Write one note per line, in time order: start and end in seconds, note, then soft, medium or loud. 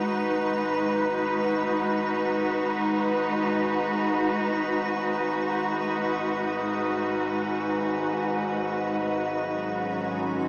0.00 10.48 G#1 medium
0.00 10.48 G#2 medium
0.00 9.07 G#3 medium
0.00 10.48 D#4 medium
0.00 10.48 F#4 medium
0.00 9.09 B4 medium
0.00 10.48 B4 medium
9.05 10.48 G#2 medium
9.05 10.48 A4 medium
9.35 10.48 F#3 medium
9.78 10.48 C#4 medium